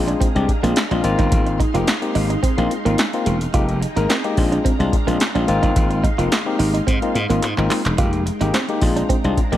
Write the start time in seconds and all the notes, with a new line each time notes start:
Already playing: A#1 G#3 C4 D4 F4 G#4 F5 A#5
0.08 D4, closed hi-hat
0.21 C4, kick, closed hi-hat
0.35 C2 G#3 C4 D4 G4, closed hi-hat
0.48 muted clean electric guitar stroke, kick, closed hi-hat
0.63 A#1 G#3 A#3 C4 D4 F4, closed hi-hat
0.76 snare, clap, closed hi-hat
0.91 A#1 G#3 C4 D4 F4, closed hi-hat
1.04 G#1 G#3 A#3 C4 D#4 F4 C6, muted clean electric guitar stroke, closed hi-hat
1.19 G1 D#4, kick, closed hi-hat
1.32 G#1, kick, closed hi-hat
1.46 muted clean electric guitar stroke, closed hi-hat
1.60 D#4, kick, closed hi-hat
1.74 F1 A#3 C4 D#4 F4 G4, closed hi-hat
1.87 muted clean electric guitar stroke, snare, clap, closed hi-hat
2.02 A#3 C4 D#4 G4, closed hi-hat
2.15 G#1 D#4, open hi-hat
2.30 D#4, closed hi-hat
2.43 C4, kick, closed hi-hat
2.57 A#1 A#3 C4 D#4 F4, closed hi-hat
2.71 muted clean electric guitar stroke, closed hi-hat
2.85 G#1 A#3 C4 D#4 F4, closed hi-hat
2.98 snare, clap, closed hi-hat
3.13 A#3 C4 D#4 F4, closed hi-hat
3.26 E1 G#3, closed hi-hat
3.41 closed hi-hat
3.54 F1 G#3 A#3 D#4 F4 G4 G#4 G5 A#5, kick, closed hi-hat
3.69 closed hi-hat
3.82 muted clean electric guitar stroke, closed hi-hat
3.96 G#1 G#3 A#3 D#4 A#4, closed hi-hat
4.09 C4, snare, clap, closed hi-hat
4.24 G#3 A#3 D#4 G4, muted clean electric guitar stroke, closed hi-hat
4.37 A#1 G#3 C4 D4 F4 F5 A#5, kick, open hi-hat
4.52 D4, closed hi-hat
4.65 C4, kick, closed hi-hat
4.79 C2 G#3 C4 D4 F4, closed hi-hat
4.93 muted clean electric guitar stroke, kick, closed hi-hat
5.07 A#1 G#3 A#3 C4 D4 F4, closed hi-hat
5.20 snare, clap, closed hi-hat
5.35 A#1 G#3 C4 D4 F4, closed hi-hat
5.48 G#1 A#3 C4 D#4 F4 C6, muted clean electric guitar stroke, closed hi-hat
5.63 G1 D#4, kick, closed hi-hat
5.76 G#1, kick, closed hi-hat
5.91 muted clean electric guitar stroke, closed hi-hat
6.04 D#4, kick, closed hi-hat
6.18 F1 A#3 C4 D#4 F4, closed hi-hat
6.31 muted clean electric guitar stroke, snare, clap, closed hi-hat
6.46 A#3 C4 D#4 G4
6.59 G#1 D#4, open hi-hat
6.74 D#4, closed hi-hat
6.87 G#2 C4, kick, closed hi-hat
7.02 A#3 C4 D#4 F4, closed hi-hat
7.15 G#2, muted clean electric guitar stroke, closed hi-hat
7.30 G#1 A#3 C4 D#4 F4, closed hi-hat
7.42 G#2, clap, closed hi-hat
7.57 G#1 A#3 C4 D#4 F4, clap
7.70 G#3, clap, open hi-hat
7.85 E1, clap, closed hi-hat
7.98 F1 G#3 A#3 D#4 F4 G4 G5 A#5, kick, closed hi-hat
8.13 closed hi-hat
8.26 muted clean electric guitar stroke, closed hi-hat
8.41 G#1 G#3 A#3 D#4 G4, closed hi-hat
8.54 C4, snare, clap, closed hi-hat
8.69 G#3 A#3 D#4 G4, muted clean electric guitar stroke, closed hi-hat
8.82 A#1 G#3 C4 D4 F4 F5, kick, open hi-hat
8.96 D4, closed hi-hat
9.09 C4, kick, closed hi-hat
9.24 C2 G#3 C4 D4 F4, closed hi-hat
9.37 muted clean electric guitar stroke, kick, closed hi-hat
9.52 A#1 G#3 A#3 C4 D4 G4, closed hi-hat